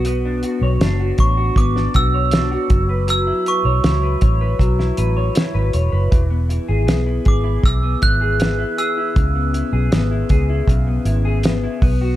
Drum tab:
HH |x-x-x-x-x-x-x-x-|x-x-x-x-x-x-x-x-|x-x-x-x-x-x-x-x-|x-x-x-x-x-x-x-o-|
SD |----o----o--o---|----o----o--o---|----o-------o---|----o-------o---|
BD |------o-o-o---o-|------o-o-------|o-----o-o-o-----|o-----o-o-----o-|